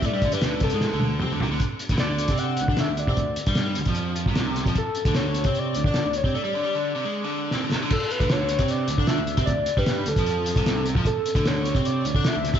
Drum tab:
CC |----------------|----------------|----------------|----------------|
HH |x-xxx-xx--------|x-xxx-xxx-x-x-x-|x-xxx-xxx-x-x-xx|x-xxx-xxx-x-x-x-|
SD |----o---o-------|----o-------o---|----o-------o-o-|----o-------o---|
T1 |----------o-----|----------------|----------------|----------------|
T2 |------------o---|----------------|----------------|----------------|
FT |--------------o-|----------------|----------------|----------------|
BD |o-o---o---------|o--o---o---o---o|o--o---o---o---o|o--o---o---o---o|

CC |----------------|x---------------|----------------|----------------|
HH |----------------|--xxx-xxx-x-x-xx|x-x-x-xxx-xxx-x-|x-xxx-xxx-x-x-xx|
SD |------------o-o-|----o-------o---|----o-------o---|----o-------o-o-|
T1 |----------------|----------------|----------------|----------------|
T2 |----------------|----------------|----------------|----------------|
FT |----------------|----------------|----------------|----------------|
BD |----------------|o--o---o---o---o|o--o---o---o---o|o--o---o---o---o|